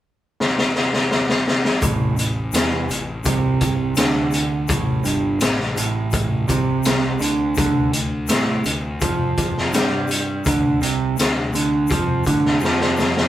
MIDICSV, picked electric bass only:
0, 0, Header, 1, 2, 480
1, 0, Start_track
1, 0, Key_signature, 0, "minor"
1, 0, Tempo, 720288
1, 1210, Time_signature, 4, 2, 24, 8
1, 8850, End_track
2, 0, Start_track
2, 0, Title_t, "Picked electric bass"
2, 0, Program_c, 0, 34
2, 1214, Note_on_c, 0, 33, 93
2, 1434, Note_off_c, 0, 33, 0
2, 1443, Note_on_c, 0, 33, 71
2, 1668, Note_off_c, 0, 33, 0
2, 1688, Note_on_c, 0, 40, 90
2, 1911, Note_off_c, 0, 40, 0
2, 1924, Note_on_c, 0, 33, 73
2, 2148, Note_off_c, 0, 33, 0
2, 2166, Note_on_c, 0, 36, 97
2, 2619, Note_off_c, 0, 36, 0
2, 2649, Note_on_c, 0, 38, 91
2, 3101, Note_off_c, 0, 38, 0
2, 3126, Note_on_c, 0, 33, 91
2, 3349, Note_off_c, 0, 33, 0
2, 3366, Note_on_c, 0, 31, 88
2, 3589, Note_off_c, 0, 31, 0
2, 3609, Note_on_c, 0, 33, 79
2, 3830, Note_off_c, 0, 33, 0
2, 3846, Note_on_c, 0, 33, 90
2, 4300, Note_off_c, 0, 33, 0
2, 4330, Note_on_c, 0, 36, 87
2, 4781, Note_off_c, 0, 36, 0
2, 4803, Note_on_c, 0, 38, 91
2, 5028, Note_off_c, 0, 38, 0
2, 5050, Note_on_c, 0, 38, 93
2, 5272, Note_off_c, 0, 38, 0
2, 5285, Note_on_c, 0, 38, 79
2, 5509, Note_off_c, 0, 38, 0
2, 5525, Note_on_c, 0, 45, 90
2, 5749, Note_off_c, 0, 45, 0
2, 5767, Note_on_c, 0, 38, 71
2, 5991, Note_off_c, 0, 38, 0
2, 6009, Note_on_c, 0, 41, 94
2, 6463, Note_off_c, 0, 41, 0
2, 6481, Note_on_c, 0, 43, 93
2, 6939, Note_off_c, 0, 43, 0
2, 6970, Note_on_c, 0, 38, 97
2, 7193, Note_off_c, 0, 38, 0
2, 7204, Note_on_c, 0, 36, 84
2, 7430, Note_off_c, 0, 36, 0
2, 7444, Note_on_c, 0, 38, 74
2, 7670, Note_off_c, 0, 38, 0
2, 7679, Note_on_c, 0, 38, 85
2, 7907, Note_off_c, 0, 38, 0
2, 7936, Note_on_c, 0, 41, 89
2, 8157, Note_off_c, 0, 41, 0
2, 8175, Note_on_c, 0, 38, 84
2, 8396, Note_off_c, 0, 38, 0
2, 8406, Note_on_c, 0, 41, 95
2, 8850, Note_off_c, 0, 41, 0
2, 8850, End_track
0, 0, End_of_file